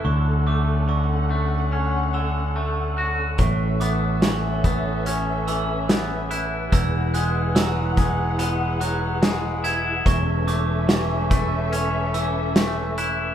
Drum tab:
HH |--------|xxxxxxxx|xxxxxxxx|xxxxxxxx|
SD |--------|--o---o-|--o---o-|--o---o-|
BD |--------|o--o----|o--o----|o--o----|